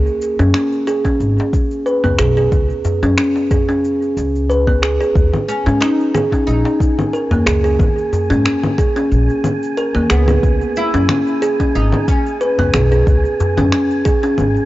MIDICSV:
0, 0, Header, 1, 7, 480
1, 0, Start_track
1, 0, Tempo, 659341
1, 1835, Time_signature, 4, 2, 24, 8
1, 10667, End_track
2, 0, Start_track
2, 0, Title_t, "Synth texture"
2, 0, Program_c, 0, 99
2, 3757, Note_on_c, 0, 80, 78
2, 10667, Note_off_c, 0, 80, 0
2, 10667, End_track
3, 0, Start_track
3, 0, Title_t, "Oud"
3, 0, Program_c, 1, 24
3, 3992, Note_on_c, 1, 61, 94
3, 4223, Note_off_c, 1, 61, 0
3, 4226, Note_on_c, 1, 63, 107
3, 4701, Note_off_c, 1, 63, 0
3, 4709, Note_on_c, 1, 63, 89
3, 5403, Note_off_c, 1, 63, 0
3, 7357, Note_on_c, 1, 59, 90
3, 7840, Note_on_c, 1, 64, 102
3, 7850, Note_off_c, 1, 59, 0
3, 8553, Note_off_c, 1, 64, 0
3, 8556, Note_on_c, 1, 63, 97
3, 8792, Note_off_c, 1, 63, 0
3, 8795, Note_on_c, 1, 61, 80
3, 9246, Note_off_c, 1, 61, 0
3, 10667, End_track
4, 0, Start_track
4, 0, Title_t, "Kalimba"
4, 0, Program_c, 2, 108
4, 286, Note_on_c, 2, 61, 102
4, 348, Note_off_c, 2, 61, 0
4, 395, Note_on_c, 2, 61, 82
4, 624, Note_off_c, 2, 61, 0
4, 636, Note_on_c, 2, 68, 96
4, 752, Note_off_c, 2, 68, 0
4, 765, Note_on_c, 2, 61, 94
4, 1232, Note_off_c, 2, 61, 0
4, 1354, Note_on_c, 2, 71, 77
4, 1478, Note_off_c, 2, 71, 0
4, 1484, Note_on_c, 2, 59, 98
4, 1589, Note_off_c, 2, 59, 0
4, 1595, Note_on_c, 2, 68, 101
4, 1712, Note_off_c, 2, 68, 0
4, 1726, Note_on_c, 2, 68, 93
4, 1830, Note_off_c, 2, 68, 0
4, 2205, Note_on_c, 2, 61, 94
4, 2268, Note_off_c, 2, 61, 0
4, 2314, Note_on_c, 2, 61, 82
4, 2544, Note_off_c, 2, 61, 0
4, 2555, Note_on_c, 2, 68, 93
4, 2672, Note_off_c, 2, 68, 0
4, 2684, Note_on_c, 2, 61, 93
4, 3152, Note_off_c, 2, 61, 0
4, 3273, Note_on_c, 2, 71, 73
4, 3398, Note_off_c, 2, 71, 0
4, 3402, Note_on_c, 2, 59, 93
4, 3508, Note_off_c, 2, 59, 0
4, 3512, Note_on_c, 2, 68, 94
4, 3630, Note_off_c, 2, 68, 0
4, 3644, Note_on_c, 2, 68, 93
4, 3749, Note_off_c, 2, 68, 0
4, 4122, Note_on_c, 2, 61, 95
4, 4187, Note_off_c, 2, 61, 0
4, 4233, Note_on_c, 2, 61, 82
4, 4463, Note_off_c, 2, 61, 0
4, 4474, Note_on_c, 2, 68, 95
4, 4591, Note_off_c, 2, 68, 0
4, 4604, Note_on_c, 2, 61, 93
4, 5072, Note_off_c, 2, 61, 0
4, 5193, Note_on_c, 2, 70, 75
4, 5318, Note_off_c, 2, 70, 0
4, 5322, Note_on_c, 2, 58, 92
4, 5429, Note_off_c, 2, 58, 0
4, 5434, Note_on_c, 2, 68, 98
4, 5551, Note_off_c, 2, 68, 0
4, 5563, Note_on_c, 2, 68, 87
4, 5669, Note_off_c, 2, 68, 0
4, 6043, Note_on_c, 2, 61, 102
4, 6107, Note_off_c, 2, 61, 0
4, 6154, Note_on_c, 2, 61, 80
4, 6384, Note_off_c, 2, 61, 0
4, 6393, Note_on_c, 2, 68, 96
4, 6511, Note_off_c, 2, 68, 0
4, 6525, Note_on_c, 2, 61, 98
4, 6992, Note_off_c, 2, 61, 0
4, 7116, Note_on_c, 2, 70, 78
4, 7239, Note_off_c, 2, 70, 0
4, 7241, Note_on_c, 2, 58, 92
4, 7348, Note_off_c, 2, 58, 0
4, 7353, Note_on_c, 2, 68, 102
4, 7471, Note_off_c, 2, 68, 0
4, 7483, Note_on_c, 2, 68, 95
4, 7589, Note_off_c, 2, 68, 0
4, 7964, Note_on_c, 2, 61, 94
4, 8028, Note_off_c, 2, 61, 0
4, 8073, Note_on_c, 2, 61, 78
4, 8303, Note_off_c, 2, 61, 0
4, 8314, Note_on_c, 2, 68, 100
4, 8432, Note_off_c, 2, 68, 0
4, 8445, Note_on_c, 2, 61, 92
4, 8912, Note_off_c, 2, 61, 0
4, 9034, Note_on_c, 2, 71, 77
4, 9158, Note_off_c, 2, 71, 0
4, 9164, Note_on_c, 2, 59, 95
4, 9269, Note_off_c, 2, 59, 0
4, 9274, Note_on_c, 2, 68, 99
4, 9391, Note_off_c, 2, 68, 0
4, 9405, Note_on_c, 2, 68, 94
4, 9510, Note_off_c, 2, 68, 0
4, 9884, Note_on_c, 2, 61, 100
4, 9947, Note_off_c, 2, 61, 0
4, 9992, Note_on_c, 2, 61, 83
4, 10222, Note_off_c, 2, 61, 0
4, 10230, Note_on_c, 2, 68, 103
4, 10350, Note_off_c, 2, 68, 0
4, 10361, Note_on_c, 2, 61, 93
4, 10667, Note_off_c, 2, 61, 0
4, 10667, End_track
5, 0, Start_track
5, 0, Title_t, "Upright bass"
5, 0, Program_c, 3, 32
5, 287, Note_on_c, 3, 42, 87
5, 379, Note_off_c, 3, 42, 0
5, 875, Note_on_c, 3, 32, 83
5, 984, Note_off_c, 3, 32, 0
5, 1484, Note_on_c, 3, 37, 77
5, 1577, Note_off_c, 3, 37, 0
5, 1594, Note_on_c, 3, 35, 81
5, 1799, Note_off_c, 3, 35, 0
5, 1835, Note_on_c, 3, 37, 88
5, 1944, Note_off_c, 3, 37, 0
5, 2203, Note_on_c, 3, 42, 80
5, 2297, Note_off_c, 3, 42, 0
5, 3035, Note_on_c, 3, 37, 71
5, 3611, Note_off_c, 3, 37, 0
5, 3752, Note_on_c, 3, 39, 82
5, 3863, Note_off_c, 3, 39, 0
5, 4124, Note_on_c, 3, 44, 84
5, 4217, Note_off_c, 3, 44, 0
5, 4714, Note_on_c, 3, 34, 77
5, 4823, Note_off_c, 3, 34, 0
5, 5323, Note_on_c, 3, 39, 84
5, 5416, Note_off_c, 3, 39, 0
5, 5433, Note_on_c, 3, 37, 80
5, 5638, Note_off_c, 3, 37, 0
5, 5673, Note_on_c, 3, 39, 92
5, 5783, Note_off_c, 3, 39, 0
5, 6044, Note_on_c, 3, 44, 83
5, 6137, Note_off_c, 3, 44, 0
5, 6636, Note_on_c, 3, 34, 82
5, 6745, Note_off_c, 3, 34, 0
5, 7245, Note_on_c, 3, 39, 83
5, 7338, Note_off_c, 3, 39, 0
5, 7355, Note_on_c, 3, 37, 83
5, 7560, Note_off_c, 3, 37, 0
5, 7595, Note_on_c, 3, 37, 89
5, 7704, Note_off_c, 3, 37, 0
5, 7965, Note_on_c, 3, 42, 86
5, 8058, Note_off_c, 3, 42, 0
5, 8555, Note_on_c, 3, 32, 81
5, 8664, Note_off_c, 3, 32, 0
5, 9166, Note_on_c, 3, 37, 75
5, 9258, Note_off_c, 3, 37, 0
5, 9276, Note_on_c, 3, 35, 82
5, 9480, Note_off_c, 3, 35, 0
5, 9516, Note_on_c, 3, 37, 88
5, 9624, Note_off_c, 3, 37, 0
5, 9888, Note_on_c, 3, 42, 85
5, 9979, Note_off_c, 3, 42, 0
5, 10479, Note_on_c, 3, 32, 78
5, 10586, Note_off_c, 3, 32, 0
5, 10667, End_track
6, 0, Start_track
6, 0, Title_t, "Darbuka"
6, 286, Note_on_c, 9, 63, 72
6, 291, Note_on_c, 9, 62, 64
6, 358, Note_off_c, 9, 63, 0
6, 364, Note_off_c, 9, 62, 0
6, 762, Note_on_c, 9, 63, 59
6, 768, Note_on_c, 9, 62, 60
6, 835, Note_off_c, 9, 63, 0
6, 841, Note_off_c, 9, 62, 0
6, 1018, Note_on_c, 9, 63, 71
6, 1091, Note_off_c, 9, 63, 0
6, 1120, Note_on_c, 9, 62, 48
6, 1193, Note_off_c, 9, 62, 0
6, 1489, Note_on_c, 9, 64, 79
6, 1562, Note_off_c, 9, 64, 0
6, 1596, Note_on_c, 9, 62, 55
6, 1599, Note_on_c, 9, 64, 81
6, 1669, Note_off_c, 9, 62, 0
6, 1672, Note_off_c, 9, 64, 0
6, 2073, Note_on_c, 9, 63, 55
6, 2075, Note_on_c, 9, 64, 85
6, 2145, Note_off_c, 9, 63, 0
6, 2147, Note_off_c, 9, 64, 0
6, 2204, Note_on_c, 9, 63, 74
6, 2206, Note_on_c, 9, 62, 67
6, 2277, Note_off_c, 9, 63, 0
6, 2279, Note_off_c, 9, 62, 0
6, 2443, Note_on_c, 9, 63, 54
6, 2446, Note_on_c, 9, 62, 36
6, 2516, Note_off_c, 9, 63, 0
6, 2518, Note_off_c, 9, 62, 0
6, 2560, Note_on_c, 9, 64, 77
6, 2633, Note_off_c, 9, 64, 0
6, 2684, Note_on_c, 9, 63, 59
6, 2686, Note_on_c, 9, 62, 57
6, 2757, Note_off_c, 9, 63, 0
6, 2759, Note_off_c, 9, 62, 0
6, 3037, Note_on_c, 9, 62, 50
6, 3110, Note_off_c, 9, 62, 0
6, 3405, Note_on_c, 9, 62, 53
6, 3478, Note_off_c, 9, 62, 0
6, 4125, Note_on_c, 9, 63, 79
6, 4131, Note_on_c, 9, 62, 67
6, 4198, Note_off_c, 9, 63, 0
6, 4203, Note_off_c, 9, 62, 0
6, 4606, Note_on_c, 9, 62, 67
6, 4607, Note_on_c, 9, 63, 60
6, 4679, Note_off_c, 9, 62, 0
6, 4680, Note_off_c, 9, 63, 0
6, 4843, Note_on_c, 9, 63, 81
6, 4916, Note_off_c, 9, 63, 0
6, 4955, Note_on_c, 9, 62, 52
6, 5028, Note_off_c, 9, 62, 0
6, 5320, Note_on_c, 9, 64, 87
6, 5393, Note_off_c, 9, 64, 0
6, 5433, Note_on_c, 9, 62, 55
6, 5437, Note_on_c, 9, 64, 91
6, 5506, Note_off_c, 9, 62, 0
6, 5510, Note_off_c, 9, 64, 0
6, 5917, Note_on_c, 9, 63, 54
6, 5917, Note_on_c, 9, 64, 80
6, 5989, Note_off_c, 9, 63, 0
6, 5989, Note_off_c, 9, 64, 0
6, 6042, Note_on_c, 9, 62, 54
6, 6044, Note_on_c, 9, 63, 78
6, 6115, Note_off_c, 9, 62, 0
6, 6117, Note_off_c, 9, 63, 0
6, 6530, Note_on_c, 9, 62, 61
6, 6534, Note_on_c, 9, 63, 62
6, 6603, Note_off_c, 9, 62, 0
6, 6607, Note_off_c, 9, 63, 0
6, 6871, Note_on_c, 9, 62, 52
6, 6944, Note_off_c, 9, 62, 0
6, 7247, Note_on_c, 9, 62, 50
6, 7320, Note_off_c, 9, 62, 0
6, 7964, Note_on_c, 9, 63, 75
6, 7966, Note_on_c, 9, 62, 65
6, 8037, Note_off_c, 9, 63, 0
6, 8039, Note_off_c, 9, 62, 0
6, 8446, Note_on_c, 9, 62, 52
6, 8447, Note_on_c, 9, 63, 60
6, 8518, Note_off_c, 9, 62, 0
6, 8519, Note_off_c, 9, 63, 0
6, 8690, Note_on_c, 9, 63, 73
6, 8763, Note_off_c, 9, 63, 0
6, 8797, Note_on_c, 9, 62, 48
6, 8870, Note_off_c, 9, 62, 0
6, 9161, Note_on_c, 9, 64, 82
6, 9233, Note_off_c, 9, 64, 0
6, 9274, Note_on_c, 9, 62, 51
6, 9278, Note_on_c, 9, 64, 89
6, 9347, Note_off_c, 9, 62, 0
6, 9350, Note_off_c, 9, 64, 0
6, 9758, Note_on_c, 9, 63, 59
6, 9758, Note_on_c, 9, 64, 97
6, 9830, Note_off_c, 9, 63, 0
6, 9831, Note_off_c, 9, 64, 0
6, 9889, Note_on_c, 9, 62, 58
6, 9891, Note_on_c, 9, 63, 70
6, 9962, Note_off_c, 9, 62, 0
6, 9964, Note_off_c, 9, 63, 0
6, 10363, Note_on_c, 9, 62, 60
6, 10364, Note_on_c, 9, 63, 62
6, 10436, Note_off_c, 9, 62, 0
6, 10436, Note_off_c, 9, 63, 0
6, 10667, End_track
7, 0, Start_track
7, 0, Title_t, "Drums"
7, 48, Note_on_c, 9, 69, 20
7, 121, Note_off_c, 9, 69, 0
7, 158, Note_on_c, 9, 69, 68
7, 230, Note_off_c, 9, 69, 0
7, 287, Note_on_c, 9, 69, 28
7, 360, Note_off_c, 9, 69, 0
7, 394, Note_on_c, 9, 26, 72
7, 397, Note_on_c, 9, 69, 38
7, 466, Note_off_c, 9, 26, 0
7, 470, Note_off_c, 9, 69, 0
7, 526, Note_on_c, 9, 69, 21
7, 599, Note_off_c, 9, 69, 0
7, 636, Note_on_c, 9, 69, 66
7, 709, Note_off_c, 9, 69, 0
7, 764, Note_on_c, 9, 36, 58
7, 768, Note_on_c, 9, 69, 30
7, 837, Note_off_c, 9, 36, 0
7, 841, Note_off_c, 9, 69, 0
7, 877, Note_on_c, 9, 69, 40
7, 950, Note_off_c, 9, 69, 0
7, 1007, Note_on_c, 9, 69, 19
7, 1080, Note_off_c, 9, 69, 0
7, 1115, Note_on_c, 9, 36, 90
7, 1117, Note_on_c, 9, 69, 67
7, 1188, Note_off_c, 9, 36, 0
7, 1190, Note_off_c, 9, 69, 0
7, 1245, Note_on_c, 9, 69, 30
7, 1318, Note_off_c, 9, 69, 0
7, 1356, Note_on_c, 9, 69, 39
7, 1429, Note_off_c, 9, 69, 0
7, 1487, Note_on_c, 9, 69, 19
7, 1560, Note_off_c, 9, 69, 0
7, 1591, Note_on_c, 9, 26, 73
7, 1595, Note_on_c, 9, 69, 71
7, 1664, Note_off_c, 9, 26, 0
7, 1668, Note_off_c, 9, 69, 0
7, 1724, Note_on_c, 9, 69, 30
7, 1796, Note_off_c, 9, 69, 0
7, 1834, Note_on_c, 9, 36, 98
7, 1835, Note_on_c, 9, 69, 38
7, 1907, Note_off_c, 9, 36, 0
7, 1908, Note_off_c, 9, 69, 0
7, 1965, Note_on_c, 9, 69, 20
7, 2037, Note_off_c, 9, 69, 0
7, 2072, Note_on_c, 9, 69, 70
7, 2145, Note_off_c, 9, 69, 0
7, 2205, Note_on_c, 9, 69, 30
7, 2278, Note_off_c, 9, 69, 0
7, 2312, Note_on_c, 9, 26, 78
7, 2316, Note_on_c, 9, 69, 40
7, 2385, Note_off_c, 9, 26, 0
7, 2389, Note_off_c, 9, 69, 0
7, 2448, Note_on_c, 9, 69, 20
7, 2521, Note_off_c, 9, 69, 0
7, 2554, Note_on_c, 9, 36, 97
7, 2555, Note_on_c, 9, 69, 74
7, 2627, Note_off_c, 9, 36, 0
7, 2628, Note_off_c, 9, 69, 0
7, 2688, Note_on_c, 9, 69, 28
7, 2761, Note_off_c, 9, 69, 0
7, 2799, Note_on_c, 9, 69, 42
7, 2872, Note_off_c, 9, 69, 0
7, 2928, Note_on_c, 9, 69, 19
7, 3001, Note_off_c, 9, 69, 0
7, 3039, Note_on_c, 9, 69, 74
7, 3111, Note_off_c, 9, 69, 0
7, 3171, Note_on_c, 9, 69, 31
7, 3243, Note_off_c, 9, 69, 0
7, 3280, Note_on_c, 9, 69, 42
7, 3353, Note_off_c, 9, 69, 0
7, 3403, Note_on_c, 9, 36, 59
7, 3410, Note_on_c, 9, 69, 20
7, 3475, Note_off_c, 9, 36, 0
7, 3483, Note_off_c, 9, 69, 0
7, 3515, Note_on_c, 9, 26, 75
7, 3519, Note_on_c, 9, 69, 66
7, 3588, Note_off_c, 9, 26, 0
7, 3592, Note_off_c, 9, 69, 0
7, 3650, Note_on_c, 9, 69, 31
7, 3723, Note_off_c, 9, 69, 0
7, 3752, Note_on_c, 9, 36, 112
7, 3759, Note_on_c, 9, 69, 38
7, 3825, Note_off_c, 9, 36, 0
7, 3832, Note_off_c, 9, 69, 0
7, 3884, Note_on_c, 9, 64, 77
7, 3888, Note_on_c, 9, 69, 22
7, 3957, Note_off_c, 9, 64, 0
7, 3961, Note_off_c, 9, 69, 0
7, 3999, Note_on_c, 9, 69, 73
7, 4071, Note_off_c, 9, 69, 0
7, 4130, Note_on_c, 9, 69, 30
7, 4203, Note_off_c, 9, 69, 0
7, 4237, Note_on_c, 9, 26, 77
7, 4241, Note_on_c, 9, 69, 41
7, 4310, Note_off_c, 9, 26, 0
7, 4314, Note_off_c, 9, 69, 0
7, 4371, Note_on_c, 9, 69, 22
7, 4443, Note_off_c, 9, 69, 0
7, 4476, Note_on_c, 9, 64, 80
7, 4479, Note_on_c, 9, 69, 73
7, 4549, Note_off_c, 9, 64, 0
7, 4552, Note_off_c, 9, 69, 0
7, 4601, Note_on_c, 9, 36, 55
7, 4610, Note_on_c, 9, 69, 30
7, 4674, Note_off_c, 9, 36, 0
7, 4683, Note_off_c, 9, 69, 0
7, 4721, Note_on_c, 9, 69, 42
7, 4793, Note_off_c, 9, 69, 0
7, 4851, Note_on_c, 9, 69, 20
7, 4924, Note_off_c, 9, 69, 0
7, 4952, Note_on_c, 9, 36, 95
7, 4960, Note_on_c, 9, 69, 75
7, 5025, Note_off_c, 9, 36, 0
7, 5033, Note_off_c, 9, 69, 0
7, 5087, Note_on_c, 9, 64, 82
7, 5090, Note_on_c, 9, 69, 32
7, 5159, Note_off_c, 9, 64, 0
7, 5163, Note_off_c, 9, 69, 0
7, 5201, Note_on_c, 9, 69, 42
7, 5274, Note_off_c, 9, 69, 0
7, 5332, Note_on_c, 9, 69, 22
7, 5405, Note_off_c, 9, 69, 0
7, 5437, Note_on_c, 9, 26, 76
7, 5440, Note_on_c, 9, 69, 72
7, 5510, Note_off_c, 9, 26, 0
7, 5513, Note_off_c, 9, 69, 0
7, 5572, Note_on_c, 9, 69, 32
7, 5645, Note_off_c, 9, 69, 0
7, 5673, Note_on_c, 9, 36, 112
7, 5677, Note_on_c, 9, 64, 69
7, 5680, Note_on_c, 9, 69, 41
7, 5746, Note_off_c, 9, 36, 0
7, 5749, Note_off_c, 9, 64, 0
7, 5753, Note_off_c, 9, 69, 0
7, 5811, Note_on_c, 9, 69, 21
7, 5884, Note_off_c, 9, 69, 0
7, 5919, Note_on_c, 9, 69, 76
7, 5992, Note_off_c, 9, 69, 0
7, 6050, Note_on_c, 9, 69, 34
7, 6123, Note_off_c, 9, 69, 0
7, 6156, Note_on_c, 9, 26, 80
7, 6160, Note_on_c, 9, 69, 43
7, 6229, Note_off_c, 9, 26, 0
7, 6233, Note_off_c, 9, 69, 0
7, 6286, Note_on_c, 9, 64, 79
7, 6290, Note_on_c, 9, 69, 22
7, 6359, Note_off_c, 9, 64, 0
7, 6363, Note_off_c, 9, 69, 0
7, 6394, Note_on_c, 9, 36, 105
7, 6399, Note_on_c, 9, 69, 79
7, 6466, Note_off_c, 9, 36, 0
7, 6472, Note_off_c, 9, 69, 0
7, 6529, Note_on_c, 9, 69, 31
7, 6602, Note_off_c, 9, 69, 0
7, 6638, Note_on_c, 9, 69, 44
7, 6711, Note_off_c, 9, 69, 0
7, 6766, Note_on_c, 9, 69, 22
7, 6839, Note_off_c, 9, 69, 0
7, 6873, Note_on_c, 9, 64, 71
7, 6877, Note_on_c, 9, 69, 75
7, 6946, Note_off_c, 9, 64, 0
7, 6950, Note_off_c, 9, 69, 0
7, 7010, Note_on_c, 9, 69, 36
7, 7082, Note_off_c, 9, 69, 0
7, 7116, Note_on_c, 9, 69, 41
7, 7189, Note_off_c, 9, 69, 0
7, 7246, Note_on_c, 9, 69, 21
7, 7319, Note_off_c, 9, 69, 0
7, 7351, Note_on_c, 9, 26, 74
7, 7355, Note_on_c, 9, 69, 77
7, 7424, Note_off_c, 9, 26, 0
7, 7428, Note_off_c, 9, 69, 0
7, 7483, Note_on_c, 9, 64, 73
7, 7486, Note_on_c, 9, 69, 35
7, 7555, Note_off_c, 9, 64, 0
7, 7559, Note_off_c, 9, 69, 0
7, 7594, Note_on_c, 9, 36, 113
7, 7596, Note_on_c, 9, 69, 41
7, 7667, Note_off_c, 9, 36, 0
7, 7669, Note_off_c, 9, 69, 0
7, 7727, Note_on_c, 9, 69, 22
7, 7800, Note_off_c, 9, 69, 0
7, 7834, Note_on_c, 9, 69, 78
7, 7907, Note_off_c, 9, 69, 0
7, 7965, Note_on_c, 9, 69, 34
7, 8038, Note_off_c, 9, 69, 0
7, 8073, Note_on_c, 9, 26, 78
7, 8073, Note_on_c, 9, 64, 72
7, 8076, Note_on_c, 9, 69, 44
7, 8145, Note_off_c, 9, 26, 0
7, 8145, Note_off_c, 9, 64, 0
7, 8149, Note_off_c, 9, 69, 0
7, 8205, Note_on_c, 9, 69, 22
7, 8278, Note_off_c, 9, 69, 0
7, 8315, Note_on_c, 9, 69, 83
7, 8388, Note_off_c, 9, 69, 0
7, 8444, Note_on_c, 9, 36, 67
7, 8446, Note_on_c, 9, 69, 33
7, 8516, Note_off_c, 9, 36, 0
7, 8519, Note_off_c, 9, 69, 0
7, 8556, Note_on_c, 9, 69, 42
7, 8629, Note_off_c, 9, 69, 0
7, 8681, Note_on_c, 9, 64, 76
7, 8684, Note_on_c, 9, 69, 22
7, 8753, Note_off_c, 9, 64, 0
7, 8757, Note_off_c, 9, 69, 0
7, 8793, Note_on_c, 9, 36, 100
7, 8795, Note_on_c, 9, 69, 76
7, 8866, Note_off_c, 9, 36, 0
7, 8868, Note_off_c, 9, 69, 0
7, 8928, Note_on_c, 9, 69, 34
7, 9001, Note_off_c, 9, 69, 0
7, 9035, Note_on_c, 9, 69, 44
7, 9108, Note_off_c, 9, 69, 0
7, 9166, Note_on_c, 9, 69, 21
7, 9238, Note_off_c, 9, 69, 0
7, 9272, Note_on_c, 9, 26, 76
7, 9272, Note_on_c, 9, 64, 70
7, 9276, Note_on_c, 9, 69, 77
7, 9345, Note_off_c, 9, 26, 0
7, 9345, Note_off_c, 9, 64, 0
7, 9348, Note_off_c, 9, 69, 0
7, 9407, Note_on_c, 9, 69, 34
7, 9480, Note_off_c, 9, 69, 0
7, 9514, Note_on_c, 9, 36, 115
7, 9518, Note_on_c, 9, 69, 41
7, 9587, Note_off_c, 9, 36, 0
7, 9591, Note_off_c, 9, 69, 0
7, 9648, Note_on_c, 9, 69, 23
7, 9720, Note_off_c, 9, 69, 0
7, 9756, Note_on_c, 9, 69, 77
7, 9829, Note_off_c, 9, 69, 0
7, 9882, Note_on_c, 9, 64, 68
7, 9885, Note_on_c, 9, 69, 32
7, 9954, Note_off_c, 9, 64, 0
7, 9958, Note_off_c, 9, 69, 0
7, 9990, Note_on_c, 9, 26, 73
7, 9994, Note_on_c, 9, 69, 42
7, 10063, Note_off_c, 9, 26, 0
7, 10067, Note_off_c, 9, 69, 0
7, 10124, Note_on_c, 9, 69, 22
7, 10197, Note_off_c, 9, 69, 0
7, 10233, Note_on_c, 9, 69, 77
7, 10234, Note_on_c, 9, 36, 106
7, 10306, Note_off_c, 9, 69, 0
7, 10307, Note_off_c, 9, 36, 0
7, 10361, Note_on_c, 9, 69, 33
7, 10434, Note_off_c, 9, 69, 0
7, 10467, Note_on_c, 9, 64, 72
7, 10471, Note_on_c, 9, 69, 43
7, 10540, Note_off_c, 9, 64, 0
7, 10544, Note_off_c, 9, 69, 0
7, 10601, Note_on_c, 9, 69, 20
7, 10667, Note_off_c, 9, 69, 0
7, 10667, End_track
0, 0, End_of_file